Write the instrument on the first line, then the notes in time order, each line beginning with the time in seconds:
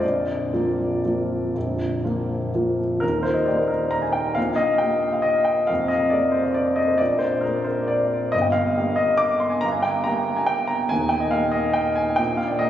grand piano
0.00 A#0 A#1 D5
0.53 F3 A#3 F4
1.05 F3 A#3 F4
1.55 A#0 A#1
2.04 F3 A#3 F4
2.54 F3 A#3 F4
3.00 D#1 D#2 A#4
3.23 C5
3.34 D#5
3.46 A#3 G4 D5
3.56 C5
3.68 A#4
3.91 A#5
4.02 G#5
4.13 G5
4.35 A#1 A#2 F5
4.56 D#5
4.78 A#3 G4 G5
5.13 F5
5.22 D#5
5.45 G5
5.67 F1 F2 F5
5.88 D#5
6.10 A#3 G#4 D5
6.32 C5
6.44 D#5
6.54 D5
6.76 D#5
6.88 C5
6.98 A#1 A#2 D5
7.19 C5
7.41 A#3 G#4 A#4
7.64 C5
7.88 D5
8.32 G1 G2 D#5
8.42 G5
8.52 F5
8.77 A#3 G4
8.96 D#5
9.17 D6
9.40 C6
9.50 G#5
9.61 G1 G2 A#5
9.72 G#5
9.82 G5
10.04 A#3 G4 A#5
10.36 G#5
10.46 G5
10.67 A#5
10.89 D#1 D#2 G#5
11.09 G5
11.20 D#5
11.31 A#3 A#4 F5
11.52 D#5
11.73 G5
11.96 G#5
12.16 A#1 A#2 G5
12.37 F5
12.48 D5
12.59 A#3 A#4 D#5